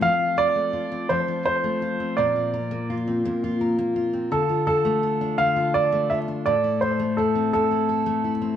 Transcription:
0.00 1.09 F3 medium
0.00 0.55 A3 soft
0.00 0.91 C4 soft
0.00 0.36 A4 soft
0.00 0.39 F5 medium
0.19 0.73 F4 soft
0.37 1.09 A4 medium
0.37 1.12 D5 medium
0.56 1.63 A3 soft
0.73 1.28 F4 soft
0.92 2.00 C4 soft
1.09 4.31 F3 medium
1.09 1.44 A4 soft
1.09 1.43 C5 medium
1.28 1.82 F4 medium
1.45 2.17 A4 medium
1.45 2.19 C5 medium
1.64 2.24 A3 soft
1.82 2.35 F4 soft
2.00 2.57 C4 soft
2.17 3.24 A#2 medium
2.17 2.52 A#4 soft
2.17 2.93 D5 medium
2.36 2.90 F4 soft
2.54 3.25 A#4 medium
2.71 3.77 A#3 soft
2.90 3.43 F4 soft
3.07 4.12 C4 soft
3.25 4.39 A#2 medium
3.25 3.60 A#4 medium
3.44 3.95 F4 medium
3.61 4.32 A#4 medium
3.79 4.39 A#3 medium
3.96 4.49 F4 soft
4.13 4.38 C4 soft
4.32 5.37 D3 medium
4.32 4.65 A4 medium
4.32 4.66 A4 soft
4.49 5.02 F4 soft
4.67 5.38 A4 medium
4.67 5.41 A4 medium
4.85 5.92 A3 medium
5.03 5.55 F4 medium
5.21 6.27 D4 soft
5.38 6.53 D3 medium
5.38 5.74 A4 medium
5.38 5.75 F5 medium
5.56 6.09 F4 soft
5.74 6.46 A4 medium
5.74 6.11 D5 medium
5.92 6.99 A3 medium
6.10 6.53 F4 soft
6.10 6.18 E5 medium
6.28 6.53 D4 soft
6.46 7.52 A2 medium
6.46 6.81 A4 medium
6.46 6.79 D5 medium
6.64 7.17 E4 soft
6.81 7.53 A4 medium
6.81 7.18 C5 medium
6.99 8.06 A3 medium
7.17 7.70 E4 soft
7.17 7.50 A4 medium
7.35 8.41 C4 soft
7.53 8.56 A2 medium
7.53 8.30 A4 medium
7.53 7.88 A4 medium
7.71 8.23 E4 soft
7.89 8.56 A4 medium
8.06 8.56 A3 soft
8.24 8.56 E4 soft
8.42 8.56 C4 soft

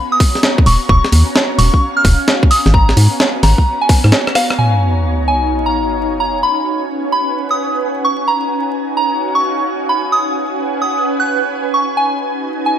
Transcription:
0.00 0.89 B3 medium
0.00 7.06 F#4 medium
0.00 1.55 C#5 medium
0.00 1.55 A#5 medium
0.12 0.30 D#6 medium
0.20 kick loud
0.20 open hi-hat loud
0.35 snare soft
0.43 snare loud
0.58 kick loud
0.66 0.77 D#1 loud
0.66 0.82 C#6 medium
0.66 open hi-hat medium
0.89 1.00 D#1 loud
0.89 3.19 C#4 medium
0.89 1.10 C#6 loud
0.89 kick loud
1.04 snare medium
1.12 1.23 D#2 loud
1.12 open hi-hat loud
1.30 3.37 F5 medium
1.36 snare loud
1.58 1.69 D#1 medium
1.58 1.79 C#6 loud
1.58 open hi-hat medium
1.63 3.37 G#5 medium
1.74 kick medium
1.97 2.15 F6 medium
2.05 2.16 D#1 medium
2.05 kick medium
2.05 open hi-hat loud
2.28 snare loud
2.43 kick loud
2.51 4.58 B3 medium
2.51 2.67 D#6 medium
2.51 open hi-hat loud
2.66 2.93 G#1 medium
2.66 snare medium
2.71 7.06 C#5 medium
2.71 2.94 A#5 medium
2.71 kick loud
2.89 snare medium
2.97 3.08 G#2 medium
2.97 open hi-hat loud
3.17 5.25 A#5 medium
3.17 snare loud
3.43 3.54 G#1 medium
3.43 3.64 A#5 loud
3.43 snare medium
3.43 open hi-hat medium
3.58 kick medium
3.81 3.99 G#5 medium
3.89 kick loud
3.89 cross-stick medium
3.89 open hi-hat loud
4.04 4.12 G#2 medium
4.04 cross-stick medium
4.12 cross-stick medium
4.12 snare loud
4.27 cross-stick medium
4.35 4.51 F5 medium
4.35 cross-stick medium
4.35 open hi-hat loud
4.50 cross-stick medium
4.58 6.99 D#4 medium
4.58 4.79 G#5 medium
4.58 sub drop medium
5.25 6.20 F5 medium
5.25 5.48 G#5 medium
5.32 12.79 G#5 medium
5.66 5.84 A#5 medium
6.20 8.94 C#4 medium
6.20 6.36 A#5 medium
6.43 6.63 B5 medium
6.61 8.28 B4 medium
7.08 8.28 F#5 medium
7.08 7.33 B5 medium
7.51 7.68 D#6 medium
8.05 8.21 C#6 medium
8.28 10.75 D#4 medium
8.28 8.48 A#5 medium
8.54 10.75 F#4 medium
8.74 10.75 C#5 medium
8.97 9.17 A#5 medium
9.02 9.89 F5 medium
9.35 9.53 C#6 medium
9.89 12.63 C#4 medium
9.89 10.05 B5 medium
10.10 11.97 B4 medium
10.10 11.97 F#5 medium
10.10 10.33 D#6 medium
10.82 11.02 D#6 medium
11.20 11.38 F#6 medium
11.74 11.90 C#6 medium
11.97 12.79 D#4 medium
11.97 12.17 G#5 medium
12.15 12.79 F#4 medium
12.42 12.79 C#5 medium
12.66 12.79 G#5 medium
12.71 12.79 F5 medium

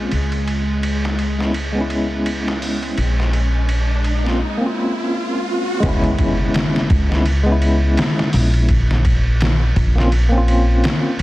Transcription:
0.00 4.40 G#3 medium
0.00 0.11 C#4 medium
0.00 0.13 F4 medium
0.11 2.94 C#2 medium
0.11 ride medium
0.11 riser medium
0.32 ride soft
0.47 ride medium
0.83 ride medium
1.05 snare soft
1.19 ride medium
1.39 1.51 G#3 medium
1.39 1.51 B3 medium
1.39 1.52 C#4 medium
1.39 snare soft
1.43 1.53 E4 medium
1.54 ride medium
1.72 2.94 G#3 medium
1.72 2.96 B3 medium
1.78 2.97 C#4 medium
1.78 2.99 E4 medium
1.90 ride medium
2.26 ride medium
2.48 snare medium
2.62 open hi-hat medium
2.83 ride soft
2.98 4.40 A#1 medium
2.98 ride medium
3.20 snare soft
3.33 ride medium
3.69 ride medium
4.04 ride medium
4.24 4.36 A#3 medium
4.24 4.37 C4 medium
4.24 4.38 C#4 medium
4.24 snare soft
4.29 4.39 F4 medium
4.58 5.80 A#3 medium
4.58 5.81 C4 medium
4.64 5.83 C#4 medium
4.64 5.84 F4 medium
5.80 6.15 C#2 medium
5.80 6.89 G#3 medium
5.80 6.90 B3 medium
5.80 kick medium
5.80 ride medium
5.80 impact medium
5.86 6.92 C#4 medium
5.86 6.93 E4 loud
6.04 ride soft
6.18 kick loud
6.18 ride medium
6.54 snare loud
6.54 ride medium
6.76 snare medium
6.90 7.94 C#2 loud
6.90 kick medium
6.90 ride medium
7.10 7.22 G#3 medium
7.10 7.23 B3 medium
7.10 7.24 C#4 medium
7.10 snare soft
7.14 7.24 E4 medium
7.25 ride medium
7.43 8.65 G#3 medium
7.43 8.67 B3 medium
7.49 8.68 C#4 medium
7.49 8.70 E4 medium
7.62 ride medium
7.97 snare loud
7.97 ride loud
8.19 snare medium
8.33 9.73 A#1 loud
8.33 open hi-hat medium
8.54 ride soft
8.69 kick loud
8.69 ride medium
8.91 snare soft
9.05 kick loud
9.05 ride medium
9.40 snare loud
9.40 ride medium
9.76 10.80 A#1 medium
9.76 kick medium
9.76 ride medium
9.95 10.08 A#3 medium
9.95 10.09 C4 medium
9.95 10.09 C#4 medium
9.95 snare soft
10.00 10.10 F4 medium
10.12 ride medium
10.29 11.22 A#3 medium
10.29 11.22 C4 medium
10.35 11.22 C#4 medium
10.35 11.22 F4 loud
10.48 ride medium
10.84 snare loud
10.84 ride medium
11.19 ride medium

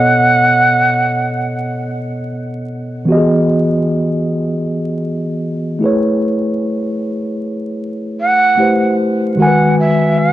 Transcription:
0.00 3.01 B2 medium
0.00 3.02 B3 medium
0.00 3.03 A4 medium
0.00 3.04 C#5 medium
0.00 3.05 D#5 medium
0.00 1.84 F#5 loud
3.05 5.78 E3 medium
3.05 5.79 B3 medium
3.05 5.80 F#4 medium
3.11 3.17 G4 medium
3.11 5.82 D#5 medium
3.17 5.81 G#4 medium
5.79 8.53 A3 medium
5.79 8.54 E4 medium
5.79 8.55 G#4 medium
5.84 8.56 B4 medium
5.84 8.57 C#5 medium
8.20 8.95 F#5 loud
8.57 9.37 A3 medium
8.57 9.38 E4 medium
8.57 9.38 G4 medium
8.57 9.38 B4 medium
8.57 9.39 C5 medium
9.36 10.33 D#3 medium
9.36 10.33 G#3 medium
9.36 10.33 F#4 medium
9.40 9.48 A#4 medium
9.40 9.76 F#5 medium
9.40 10.33 G#5 medium
9.47 10.33 B4 medium
9.79 10.20 E5 medium
10.18 10.33 F#5 loud

